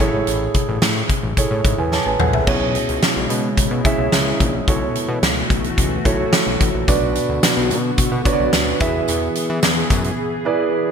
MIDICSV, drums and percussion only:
0, 0, Header, 1, 2, 480
1, 0, Start_track
1, 0, Tempo, 550459
1, 239, Time_signature, 4, 2, 24, 8
1, 9518, End_track
2, 0, Start_track
2, 0, Title_t, "Drums"
2, 0, Note_on_c, 9, 36, 98
2, 0, Note_on_c, 9, 42, 74
2, 83, Note_off_c, 9, 42, 0
2, 85, Note_off_c, 9, 36, 0
2, 235, Note_on_c, 9, 42, 86
2, 322, Note_off_c, 9, 42, 0
2, 473, Note_on_c, 9, 42, 73
2, 477, Note_on_c, 9, 36, 85
2, 560, Note_off_c, 9, 42, 0
2, 564, Note_off_c, 9, 36, 0
2, 713, Note_on_c, 9, 42, 73
2, 714, Note_on_c, 9, 38, 108
2, 800, Note_off_c, 9, 42, 0
2, 801, Note_off_c, 9, 38, 0
2, 954, Note_on_c, 9, 42, 64
2, 955, Note_on_c, 9, 36, 88
2, 1041, Note_off_c, 9, 42, 0
2, 1042, Note_off_c, 9, 36, 0
2, 1194, Note_on_c, 9, 42, 91
2, 1196, Note_on_c, 9, 36, 84
2, 1282, Note_off_c, 9, 42, 0
2, 1283, Note_off_c, 9, 36, 0
2, 1435, Note_on_c, 9, 36, 98
2, 1435, Note_on_c, 9, 42, 66
2, 1522, Note_off_c, 9, 36, 0
2, 1522, Note_off_c, 9, 42, 0
2, 1675, Note_on_c, 9, 38, 46
2, 1762, Note_off_c, 9, 38, 0
2, 1915, Note_on_c, 9, 45, 78
2, 2002, Note_off_c, 9, 45, 0
2, 2036, Note_on_c, 9, 43, 76
2, 2123, Note_off_c, 9, 43, 0
2, 2155, Note_on_c, 9, 49, 83
2, 2156, Note_on_c, 9, 36, 109
2, 2243, Note_off_c, 9, 36, 0
2, 2243, Note_off_c, 9, 49, 0
2, 2396, Note_on_c, 9, 42, 70
2, 2484, Note_off_c, 9, 42, 0
2, 2518, Note_on_c, 9, 42, 50
2, 2605, Note_off_c, 9, 42, 0
2, 2637, Note_on_c, 9, 42, 73
2, 2639, Note_on_c, 9, 38, 107
2, 2724, Note_off_c, 9, 42, 0
2, 2726, Note_off_c, 9, 38, 0
2, 2877, Note_on_c, 9, 42, 69
2, 2964, Note_off_c, 9, 42, 0
2, 3117, Note_on_c, 9, 36, 89
2, 3117, Note_on_c, 9, 42, 94
2, 3204, Note_off_c, 9, 36, 0
2, 3204, Note_off_c, 9, 42, 0
2, 3357, Note_on_c, 9, 36, 98
2, 3359, Note_on_c, 9, 42, 65
2, 3444, Note_off_c, 9, 36, 0
2, 3446, Note_off_c, 9, 42, 0
2, 3596, Note_on_c, 9, 38, 101
2, 3600, Note_on_c, 9, 42, 80
2, 3684, Note_off_c, 9, 38, 0
2, 3687, Note_off_c, 9, 42, 0
2, 3839, Note_on_c, 9, 42, 82
2, 3840, Note_on_c, 9, 36, 86
2, 3926, Note_off_c, 9, 42, 0
2, 3927, Note_off_c, 9, 36, 0
2, 4079, Note_on_c, 9, 36, 109
2, 4081, Note_on_c, 9, 42, 86
2, 4166, Note_off_c, 9, 36, 0
2, 4169, Note_off_c, 9, 42, 0
2, 4320, Note_on_c, 9, 42, 71
2, 4407, Note_off_c, 9, 42, 0
2, 4558, Note_on_c, 9, 42, 73
2, 4560, Note_on_c, 9, 38, 105
2, 4645, Note_off_c, 9, 42, 0
2, 4647, Note_off_c, 9, 38, 0
2, 4798, Note_on_c, 9, 36, 94
2, 4800, Note_on_c, 9, 42, 67
2, 4885, Note_off_c, 9, 36, 0
2, 4887, Note_off_c, 9, 42, 0
2, 4920, Note_on_c, 9, 42, 50
2, 5007, Note_off_c, 9, 42, 0
2, 5038, Note_on_c, 9, 42, 96
2, 5039, Note_on_c, 9, 36, 94
2, 5126, Note_off_c, 9, 36, 0
2, 5126, Note_off_c, 9, 42, 0
2, 5279, Note_on_c, 9, 36, 93
2, 5281, Note_on_c, 9, 42, 67
2, 5366, Note_off_c, 9, 36, 0
2, 5368, Note_off_c, 9, 42, 0
2, 5517, Note_on_c, 9, 38, 113
2, 5521, Note_on_c, 9, 42, 82
2, 5604, Note_off_c, 9, 38, 0
2, 5608, Note_off_c, 9, 42, 0
2, 5759, Note_on_c, 9, 42, 84
2, 5761, Note_on_c, 9, 36, 91
2, 5846, Note_off_c, 9, 42, 0
2, 5848, Note_off_c, 9, 36, 0
2, 5998, Note_on_c, 9, 54, 49
2, 6000, Note_on_c, 9, 36, 102
2, 6001, Note_on_c, 9, 42, 84
2, 6085, Note_off_c, 9, 54, 0
2, 6087, Note_off_c, 9, 36, 0
2, 6088, Note_off_c, 9, 42, 0
2, 6238, Note_on_c, 9, 42, 72
2, 6241, Note_on_c, 9, 54, 42
2, 6325, Note_off_c, 9, 42, 0
2, 6328, Note_off_c, 9, 54, 0
2, 6478, Note_on_c, 9, 42, 76
2, 6479, Note_on_c, 9, 54, 80
2, 6480, Note_on_c, 9, 38, 110
2, 6565, Note_off_c, 9, 42, 0
2, 6566, Note_off_c, 9, 54, 0
2, 6567, Note_off_c, 9, 38, 0
2, 6719, Note_on_c, 9, 54, 49
2, 6722, Note_on_c, 9, 42, 70
2, 6806, Note_off_c, 9, 54, 0
2, 6809, Note_off_c, 9, 42, 0
2, 6957, Note_on_c, 9, 42, 95
2, 6957, Note_on_c, 9, 54, 48
2, 6959, Note_on_c, 9, 36, 89
2, 7044, Note_off_c, 9, 54, 0
2, 7045, Note_off_c, 9, 42, 0
2, 7046, Note_off_c, 9, 36, 0
2, 7195, Note_on_c, 9, 54, 39
2, 7198, Note_on_c, 9, 36, 98
2, 7201, Note_on_c, 9, 42, 67
2, 7282, Note_off_c, 9, 54, 0
2, 7285, Note_off_c, 9, 36, 0
2, 7288, Note_off_c, 9, 42, 0
2, 7437, Note_on_c, 9, 38, 107
2, 7437, Note_on_c, 9, 54, 75
2, 7441, Note_on_c, 9, 42, 82
2, 7524, Note_off_c, 9, 38, 0
2, 7524, Note_off_c, 9, 54, 0
2, 7528, Note_off_c, 9, 42, 0
2, 7675, Note_on_c, 9, 54, 52
2, 7679, Note_on_c, 9, 36, 105
2, 7680, Note_on_c, 9, 42, 87
2, 7762, Note_off_c, 9, 54, 0
2, 7766, Note_off_c, 9, 36, 0
2, 7767, Note_off_c, 9, 42, 0
2, 7915, Note_on_c, 9, 54, 46
2, 7920, Note_on_c, 9, 42, 91
2, 8002, Note_off_c, 9, 54, 0
2, 8007, Note_off_c, 9, 42, 0
2, 8156, Note_on_c, 9, 42, 78
2, 8159, Note_on_c, 9, 54, 43
2, 8243, Note_off_c, 9, 42, 0
2, 8247, Note_off_c, 9, 54, 0
2, 8394, Note_on_c, 9, 42, 75
2, 8394, Note_on_c, 9, 54, 74
2, 8396, Note_on_c, 9, 38, 114
2, 8481, Note_off_c, 9, 42, 0
2, 8481, Note_off_c, 9, 54, 0
2, 8483, Note_off_c, 9, 38, 0
2, 8635, Note_on_c, 9, 54, 49
2, 8636, Note_on_c, 9, 36, 98
2, 8637, Note_on_c, 9, 42, 73
2, 8722, Note_off_c, 9, 54, 0
2, 8723, Note_off_c, 9, 36, 0
2, 8725, Note_off_c, 9, 42, 0
2, 8757, Note_on_c, 9, 42, 49
2, 8845, Note_off_c, 9, 42, 0
2, 9518, End_track
0, 0, End_of_file